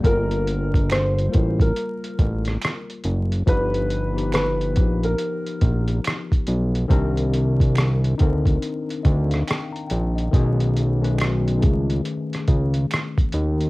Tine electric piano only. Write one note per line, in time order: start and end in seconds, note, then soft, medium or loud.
0.00 0.99 G3 medium
0.00 1.00 A#3 medium
0.00 1.01 F4 medium
0.04 1.01 A#4 loud
1.28 2.57 G3 medium
1.28 2.58 A#3 medium
1.28 2.58 F4 medium
1.32 2.59 A#4 medium
3.46 3.95 F3 medium
3.46 3.96 B3 medium
3.46 3.96 D#4 medium
3.50 3.97 G4 loud
4.13 4.61 F3 medium
4.13 4.62 B3 medium
4.13 4.62 D#4 medium
4.13 4.63 G4 medium
4.73 6.01 F3 medium
4.73 6.02 B3 medium
4.73 6.02 D#4 medium
4.73 6.03 G4 medium
6.88 7.86 D#3 loud
6.88 7.86 C4 loud
6.88 7.87 D4 loud
6.88 7.88 A#4 loud
8.18 9.46 C4 medium
8.18 9.46 D4 medium
8.18 9.45 D#4 loud
8.18 9.47 A#4 medium
9.03 9.29 D#5 medium
9.29 9.45 F5 medium
9.48 9.73 G5 medium
9.72 9.88 A#5 medium
9.88 10.14 G5 medium
10.15 10.57 D#5 medium
10.31 10.80 D#3 loud
10.31 10.81 A3 medium
10.31 10.82 C#4 loud
10.35 10.82 G#4 loud
11.00 11.48 D#3 medium
11.00 11.48 A3 medium
11.00 11.49 C#4 medium
11.04 11.50 B4 loud
11.58 12.86 D#3 medium
11.58 12.87 A3 medium
11.58 12.88 C#4 medium
11.62 12.88 G#4 medium